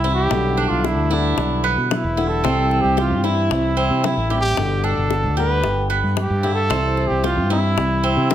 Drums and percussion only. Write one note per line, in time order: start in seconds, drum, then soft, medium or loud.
0.04 high bongo soft
0.31 high bongo medium
0.58 high bongo soft
0.84 high bongo medium
1.38 high bongo medium
1.65 high bongo soft
1.91 high bongo medium
1.91 low bongo medium
2.18 high bongo soft
2.45 high bongo medium
2.71 high bongo soft
2.98 high bongo medium
3.25 high bongo soft
3.51 high bongo medium
4.04 high bongo medium
4.04 low bongo medium
4.31 high bongo soft
4.57 high bongo medium
4.84 high bongo soft
5.10 high bongo medium
5.64 high bongo medium
5.91 high bongo soft
6.17 high bongo medium
6.17 low bongo medium
6.44 high bongo soft
6.71 high bongo medium
6.97 high bongo soft
7.24 high bongo medium
7.51 high bongo soft
7.78 high bongo medium
8.31 high bongo medium
8.31 low bongo medium